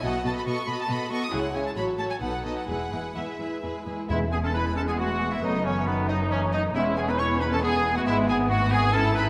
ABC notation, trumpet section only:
X:1
M:3/4
L:1/16
Q:1/4=136
K:E
V:1 name="Trumpet section"
z12 | z12 | z12 | E2 G A B2 A G F3 E |
D2 C2 B,2 D2 C2 D2 | E2 G B c2 B A G3 F | E2 G2 F2 G2 A2 B2 |]